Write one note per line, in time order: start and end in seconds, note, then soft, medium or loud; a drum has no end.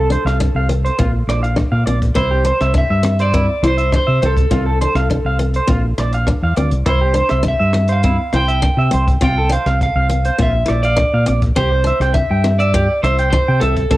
0.00 0.16 C2 medium
0.00 1.83 A4 medium
0.10 0.27 D4 medium
0.10 0.23 C5 medium
0.10 closed hi-hat medium
0.25 0.48 C2 medium
0.25 0.37 F5 medium
0.25 cross-stick medium
0.25 closed hi-hat soft
0.40 0.57 D4 medium
0.40 kick medium
0.40 closed hi-hat soft
0.55 0.89 C2 medium
0.55 0.67 F5 medium
0.69 0.86 C4 medium
0.69 closed hi-hat soft
0.85 0.96 C5 medium
0.85 closed hi-hat soft
0.98 1.22 A#1 medium
0.98 1.15 C4 medium
0.98 1.11 F4 medium
0.98 kick medium
0.98 closed hi-hat soft
1.27 1.62 A#1 medium
1.27 1.45 E4 medium
1.27 1.40 D5 medium
1.27 cross-stick medium
1.27 closed hi-hat soft
1.43 1.54 F5 medium
1.43 closed hi-hat soft
1.56 1.73 D4 medium
1.56 kick medium
1.56 cross-stick medium
1.56 closed hi-hat soft
1.72 1.83 A#2 medium
1.72 1.84 F5 medium
1.86 2.10 A#1 loud
1.86 2.03 C4 medium
1.86 1.98 D5 medium
1.86 closed hi-hat soft
2.02 kick medium
2.02 closed hi-hat medium
2.15 2.51 C2 loud
2.15 2.32 C4 medium
2.15 2.28 E4 loud
2.15 2.71 C5 loud
2.15 kick medium
2.15 cross-stick medium
2.15 closed hi-hat soft
2.31 2.42 G4 medium
2.45 2.58 C5 medium
2.45 muted steel-string acoustic guitar stroke medium
2.45 closed hi-hat medium
2.61 2.84 C2 medium
2.61 2.73 E5 medium
2.61 cross-stick medium
2.61 closed hi-hat medium
2.74 2.91 D4 medium
2.74 3.18 E5 loud
2.74 kick medium
2.74 closed hi-hat medium
2.90 3.47 G2 medium
2.90 3.02 E5 medium
3.03 3.20 C4 medium
3.03 cross-stick medium
3.03 closed hi-hat medium
3.19 3.31 C5 medium
3.19 3.66 D5 loud
3.19 closed hi-hat medium
3.34 3.50 C4 medium
3.34 3.46 E4 medium
3.34 kick medium
3.34 closed hi-hat medium
3.63 3.97 C2 medium
3.63 3.80 E4 medium
3.63 3.75 C5 medium
3.63 cross-stick medium
3.63 closed hi-hat medium
3.68 3.93 C5 medium
3.77 3.89 E5 medium
3.77 closed hi-hat medium
3.92 4.10 D4 medium
3.92 4.25 C5 medium
3.92 kick medium
3.92 cross-stick medium
3.92 closed hi-hat soft
4.07 4.19 C3 medium
4.07 4.19 E5 medium
4.22 4.45 C2 medium
4.22 4.39 C4 medium
4.22 5.96 A4 medium
4.22 4.34 C5 medium
4.22 closed hi-hat medium
4.37 kick medium
4.37 closed hi-hat medium
4.51 4.86 C2 loud
4.51 4.67 C4 medium
4.51 4.63 F4 medium
4.51 kick medium
4.51 cross-stick medium
4.51 closed hi-hat soft
4.66 4.78 A4 medium
4.81 4.98 D4 medium
4.81 4.93 C5 medium
4.81 closed hi-hat medium
4.95 5.18 C2 medium
4.95 5.07 F5 medium
4.95 cross-stick medium
4.95 closed hi-hat soft
5.10 5.27 D4 medium
5.10 kick medium
5.10 closed hi-hat medium
5.25 5.59 C2 medium
5.25 5.37 F5 medium
5.39 5.56 C4 medium
5.39 closed hi-hat soft
5.54 5.67 C5 medium
5.54 closed hi-hat soft
5.67 5.92 A#1 loud
5.67 5.84 C4 medium
5.67 5.81 F4 medium
5.67 kick medium
5.67 closed hi-hat soft
5.98 6.32 A#1 medium
5.98 6.15 E4 medium
5.98 6.11 D5 medium
5.98 cross-stick medium
5.98 closed hi-hat soft
6.13 6.25 F5 medium
6.13 closed hi-hat soft
6.27 6.44 D4 medium
6.27 kick medium
6.27 cross-stick medium
6.27 closed hi-hat soft
6.42 6.56 E2 medium
6.42 6.55 F5 medium
6.56 6.70 D2 medium
6.56 6.74 C4 medium
6.56 6.69 D5 medium
6.56 closed hi-hat soft
6.71 6.85 C2 medium
6.71 closed hi-hat medium
6.86 7.21 C2 medium
6.86 7.03 C4 medium
6.86 6.98 E4 medium
6.86 7.42 C5 medium
6.86 kick medium
6.86 cross-stick medium
6.86 closed hi-hat soft
7.01 7.13 G4 medium
7.14 7.31 D4 medium
7.14 7.28 C5 medium
7.14 closed hi-hat medium
7.29 7.54 C2 medium
7.29 7.42 E5 medium
7.29 cross-stick medium
7.29 closed hi-hat soft
7.43 7.60 D4 medium
7.43 kick medium
7.43 closed hi-hat soft
7.48 7.92 E5 medium
7.60 8.17 G2 medium
7.60 7.72 E5 medium
7.73 7.91 C4 medium
7.73 cross-stick medium
7.73 closed hi-hat soft
7.88 8.01 C5 medium
7.88 closed hi-hat medium
7.92 8.35 F5 medium
8.03 8.20 C4 medium
8.03 8.16 E4 medium
8.03 kick medium
8.03 closed hi-hat soft
8.33 8.68 C2 medium
8.33 8.50 E4 medium
8.33 8.46 C5 medium
8.33 9.23 G5 loud
8.33 cross-stick medium
8.33 closed hi-hat medium
8.48 8.60 E5 medium
8.48 closed hi-hat medium
8.62 8.79 D4 medium
8.62 kick medium
8.62 cross-stick medium
8.62 closed hi-hat medium
8.77 8.88 C3 medium
8.77 8.90 E5 medium
8.91 9.16 C2 loud
8.91 9.08 C4 medium
8.91 9.05 C5 medium
8.91 closed hi-hat medium
9.07 kick medium
9.07 closed hi-hat medium
9.21 9.56 C2 loud
9.21 9.37 C4 medium
9.21 9.34 F4 medium
9.21 9.52 G5 loud
9.21 kick medium
9.21 cross-stick medium
9.21 closed hi-hat medium
9.38 9.49 A4 medium
9.49 9.66 D4 medium
9.49 9.64 C5 medium
9.49 9.81 F5 medium
9.49 closed hi-hat medium
9.66 9.89 C2 loud
9.66 9.78 F5 medium
9.66 cross-stick medium
9.66 closed hi-hat soft
9.81 10.36 F5 medium
9.81 kick medium
9.81 closed hi-hat medium
9.95 10.29 C2 medium
9.95 10.07 F5 medium
10.09 10.26 C4 medium
10.09 closed hi-hat soft
10.25 10.37 C5 medium
10.25 closed hi-hat medium
10.38 10.62 A#1 loud
10.38 10.55 C4 medium
10.38 10.51 F4 medium
10.38 10.82 E5 medium
10.38 kick medium
10.38 closed hi-hat soft
10.66 11.03 A#1 medium
10.66 10.83 E4 medium
10.66 10.80 D5 medium
10.66 cross-stick medium
10.66 closed hi-hat soft
10.83 11.24 D5 medium
10.83 10.96 F5 medium
10.83 closed hi-hat medium
10.96 11.13 D4 medium
10.96 kick medium
10.96 cross-stick medium
10.96 closed hi-hat soft
11.13 11.24 A#2 medium
11.13 11.25 F5 medium
11.26 11.51 A#1 medium
11.26 11.43 C4 medium
11.26 11.39 D5 medium
11.26 closed hi-hat medium
11.42 kick medium
11.42 closed hi-hat medium
11.56 11.91 C2 medium
11.56 11.73 C4 loud
11.56 11.69 G4 medium
11.56 12.14 C5 loud
11.56 kick medium
11.56 cross-stick medium
11.56 closed hi-hat soft
11.72 11.83 C5 medium
11.84 12.01 D4 medium
11.84 11.98 E5 medium
11.84 closed hi-hat soft
12.00 12.23 C2 loud
12.00 12.13 G5 medium
12.00 cross-stick medium
12.00 closed hi-hat soft
12.14 12.31 D4 medium
12.14 12.56 E5 loud
12.14 kick medium
12.14 closed hi-hat soft
12.30 12.87 G2 medium
12.30 12.42 G5 medium
12.44 12.61 C4 medium
12.44 cross-stick medium
12.44 closed hi-hat soft
12.59 13.03 D5 medium
12.59 12.71 E5 medium
12.59 closed hi-hat soft
12.74 12.86 G4 medium
12.74 muted steel-string acoustic guitar stroke medium
12.74 kick medium
12.74 closed hi-hat soft
13.03 13.38 C2 medium
13.03 13.20 E4 medium
13.03 13.29 C5 medium
13.03 13.15 E5 medium
13.03 cross-stick medium
13.03 closed hi-hat medium
13.19 13.30 G5 medium
13.19 closed hi-hat medium
13.30 13.49 D4 medium
13.30 13.62 C5 medium
13.30 kick medium
13.30 cross-stick medium
13.30 closed hi-hat soft
13.48 13.59 C3 medium
13.48 13.59 G5 medium
13.60 13.85 C2 loud
13.60 13.78 C4 medium
13.60 13.97 A4 medium
13.60 13.74 E5 medium
13.60 closed hi-hat medium
13.77 kick medium
13.77 closed hi-hat medium
13.91 13.97 C2 loud
13.91 13.97 C4 medium
13.91 13.97 A4 medium
13.91 kick medium
13.91 cross-stick medium
13.91 closed hi-hat soft